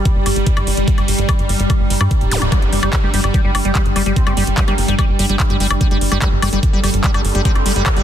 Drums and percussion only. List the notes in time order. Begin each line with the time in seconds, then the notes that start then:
0.05 kick, closed hi-hat
0.26 open hi-hat, high woodblock
0.36 closed hi-hat
0.47 kick, closed hi-hat
0.57 closed hi-hat, high woodblock
0.67 open hi-hat
0.77 closed hi-hat
0.88 kick, closed hi-hat
0.98 closed hi-hat, high woodblock
1.08 open hi-hat
1.18 closed hi-hat
1.29 kick, closed hi-hat, high woodblock
1.39 closed hi-hat
1.49 open hi-hat
1.60 closed hi-hat
1.70 kick, closed hi-hat, high woodblock
1.90 open hi-hat
2.01 closed hi-hat, high woodblock
2.11 kick, closed hi-hat
2.21 closed hi-hat
2.31 open hi-hat
2.42 closed hi-hat, high woodblock
2.52 kick, closed hi-hat, high woodblock
2.62 closed hi-hat
2.73 open hi-hat
2.83 closed hi-hat, high woodblock
2.93 kick, clap, closed hi-hat
3.14 open hi-hat
3.24 closed hi-hat, high woodblock
3.34 kick, closed hi-hat
3.55 open hi-hat, high woodblock
3.65 closed hi-hat
3.75 kick, clap, closed hi-hat
3.86 closed hi-hat
3.96 open hi-hat, high woodblock
4.06 closed hi-hat
4.16 kick, closed hi-hat
4.27 closed hi-hat, high woodblock
4.37 open hi-hat
4.47 closed hi-hat
4.58 kick, clap, closed hi-hat
4.68 closed hi-hat, high woodblock
4.78 open hi-hat
4.88 closed hi-hat
4.99 kick, closed hi-hat, high woodblock
5.19 open hi-hat
5.29 closed hi-hat
5.40 kick, clap, closed hi-hat, high woodblock
5.50 closed hi-hat
5.60 open hi-hat
5.71 closed hi-hat, high woodblock
5.81 kick, closed hi-hat
5.91 closed hi-hat
6.01 open hi-hat
6.12 closed hi-hat, high woodblock
6.22 kick, clap, closed hi-hat
6.42 open hi-hat, high woodblock
6.53 closed hi-hat
6.63 kick, closed hi-hat
6.84 open hi-hat, high woodblock
6.94 closed hi-hat
7.04 kick, clap, closed hi-hat
7.14 closed hi-hat, high woodblock
7.25 open hi-hat
7.35 closed hi-hat
7.45 kick, closed hi-hat
7.55 closed hi-hat, high woodblock
7.66 open hi-hat
7.76 closed hi-hat
7.86 kick, clap, closed hi-hat, high woodblock
7.97 closed hi-hat